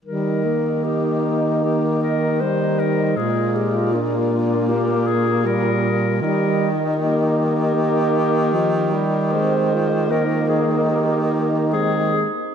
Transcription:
<<
  \new Staff \with { instrumentName = "Clarinet" } { \time 4/4 \key ees \major \tempo 4 = 77 bes'4 g'4 g'8 bes'8 c''8 bes'8 | aes'8 g'8 f'4 g'8 aes'8 bes'4 | bes'8 r8 g'2. | c''4 bes'8 aes'8 g'4 aes'8 r8 | }
  \new Staff \with { instrumentName = "Alto saxophone" } { \time 4/4 \key ees \major ees'2. ees'4 | f'4 d'8 d'8 f'2 | ees'2.~ ees'8 r8 | c'8 f'8 ees'2 c'8 r8 | }
  \new Staff \with { instrumentName = "Tenor saxophone" } { \clef bass \time 4/4 \key ees \major g8 bes4. bes4 g4 | aes4 bes2 g4 | g8 r8 bes4 bes4 f8 g8 | aes4 bes2 aes8 r8 | }
  \new Staff \with { instrumentName = "Baritone saxophone" } { \clef bass \time 4/4 \key ees \major ees1 | bes,1 | ees1~ | ees2.~ ees8 r8 | }
>>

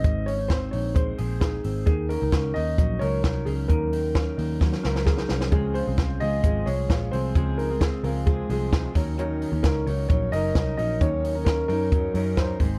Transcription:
<<
  \new Staff \with { instrumentName = "Upright piano" } { \time 4/4 \key ees \dorian \tempo 4 = 131 ees''8 des''8 c''8 des''8 c''4 aes'4 | aes'8 bes'4 ees''4 des''4 aes'8 | bes'2. aes'4 | aes'8 c''4 ees''4 des''4 c''8~ |
c''8 bes'8 aes'8 bes'8 aes'4. r8 | r4 bes'8 des''8 des''8 ees''4 ees''8 | des''4 bes'8 bes'4. c''4 | }
  \new Staff \with { instrumentName = "Clean electric guitar" } { \time 4/4 \key ees \dorian <aes, aes c' ees' aes'>8 des'16 ees'16 c'8 ees'8 aes8 aes'8 ees'8 c'8 | ees8 des'16 ees'16 des'8 ees'8 ges8 bes'8 ees'8 des'8 | ees8 ees'8 des'8 ees'8 ges8 bes'8 des'16 ees'16 des'8 | des8 f'4 f'8 aes8 aes'8 f'8 c'8~ |
c'8 ees'16 f'16 c'8 f'8 aes8 aes'8 ees'16 f'16 ees8 | ees8 ees'8 des'8 ees'8 ges8 bes'8 ees'8 des'8 | ees8 ees'8 des'8 ees'8 ges8 bes'8 ees'8 aes,8 | }
  \new Staff \with { instrumentName = "Steel-string acoustic guitar" } { \time 4/4 \key ees \dorian r1 | r1 | r1 | <des f aes c' aes'>8. <aes c' aes'>8. <f aes c' aes'>8 <f aes c' aes'>8 <f aes aes'>4 <f aes c' aes'>8 |
<des f aes c' aes'>8. <aes c' aes'>8. <f aes c' aes'>8 <f aes c' aes'>8 <f aes c' aes'>4 <ges des' ees' bes'>8 | <ees ges des' ees' bes'>8. <des' ees' bes'>8. <ges des' ees' bes'>8 <ges des' ees' bes'>8 <ges des' ees' bes'>4 <ges des' ees' bes'>8 | <ees ges des' ees' bes'>8. <des' ees' bes'>8. <ges des' ees' bes'>8 <ges des' ees' bes'>8 <ges des' ees' bes'>4 <aes c' ees' aes'>8 | }
  \new Staff \with { instrumentName = "Picked electric bass" } { \clef bass \time 4/4 \key ees \dorian aes,,4. bes,,4 bes,,4 aes,,8 | ees,8. des,16 des,8 ees,8 bes,,8 des,8 c,8 des,8 | ees,4. ees,4 des,4 c,8 | des,8. c,16 r8 des,8 aes,,8 c,8 bes,,8 c,8 |
des,4. des,4 c,4 ees,8~ | ees,8. ees,16 des,8 des,8 bes,,8 ges,,8 c,8 bes,,8 | ees,4. ges,4 ges,4 aes,,8 | }
  \new DrumStaff \with { instrumentName = "Drums" } \drummode { \time 4/4 <hh bd>8 hho8 <hh bd sn>8 hho8 <hh bd>8 hho8 <hh bd sn>8 hho8 | <hh bd>8 hho8 <hh bd sn>8 hho8 <hh bd>8 hho8 <hh bd sn>8 hho8 | <hh bd>8 hho8 <hh bd sn>8 hho8 <bd sn>16 sn16 sn16 sn16 <bd sn>16 sn16 sn16 sn16 | <hh bd>8 hho8 <hh bd sn>8 hho8 <hh bd>8 hho8 <hh bd sn>8 hho8 |
<hh bd>8 hho8 <hh bd sn>8 hho8 <hh bd>8 hho8 <hh bd sn>8 <hho bd>8 | hh8 hho8 <hh bd sn>8 hho8 <hh bd>8 hho8 <hh bd sn>8 hho8 | <hh bd>8 hho8 <hh bd sn>8 hho8 <hh bd>8 hho8 <hh bd sn>8 <hho bd>8 | }
>>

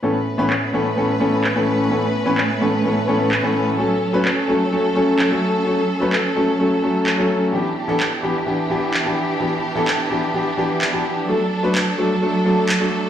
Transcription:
<<
  \new Staff \with { instrumentName = "String section" } { \time 4/4 \key a \mixolydian \tempo 4 = 128 << { <a b'>1~ | <a b'>1 | <fis a'>1~ | <fis a'>1 |
<e g'>1~ | <e g'>1 | <fis a'>1 | } \\ { cis'1~ | cis'1~ | cis'1~ | cis'1 |
d'1~ | d'1~ | d'1 | } >> }
  \new Staff \with { instrumentName = "Grand piano" } { \time 4/4 \key a \mixolydian <a, e b cis' a'>16 r8 <a, e b cis' b'>16 r8 <a, e b cis' a'>16 r16 <a, e b cis' a'>16 r16 <a, e b cis' a'>8 r16 <a, e b cis' a'>8. | <a, e b cis' a'>16 r8 <a, e b cis' b'>16 r8 <a, e b cis' a'>16 r16 <a, e b cis' a'>16 r16 <a, e b cis' a'>8 r16 <a, e b cis' a'>8. | <fis a cis' a'>16 r8 <fis a cis' b'>16 r8 <fis a cis' a'>16 r16 <fis a cis' a'>16 r16 <fis a cis' a'>8 r16 <fis a cis' a'>8. | <fis a cis' a'>16 r8 <fis a cis' b'>16 r8 <fis a cis' a'>16 r16 <fis a cis' a'>16 r16 <fis a cis' a'>8. <fis a cis' a'>8. |
<e b d' g'>16 r8 <e b d' a'>16 r8 <e b d' g'>16 r16 <e b d' g'>16 r16 <e b d' g'>8 r16 <e b d' g'>8. | <e b d' g'>16 r8 <e b d' a'>16 r8 <e b d' g'>16 r16 <e b d' g'>16 r16 <e b d' g'>8 r16 <e b d' g'>8. | <fis a d' a'>16 r8 <fis a d' b'>16 r8 <fis a d' a'>16 r16 <fis a d' a'>16 r16 <fis a d' a'>8 r16 <fis a d' a'>8. | }
  \new DrumStaff \with { instrumentName = "Drums" } \drummode { \time 4/4 r4 hc4 r4 hc4 | r4 hc4 r4 hc4 | r4 hc4 r4 hc4 | r4 hc4 r4 hc4 |
r4 hc4 r4 hc4 | r4 hc4 r4 hc4 | r4 hc4 r4 hc4 | }
>>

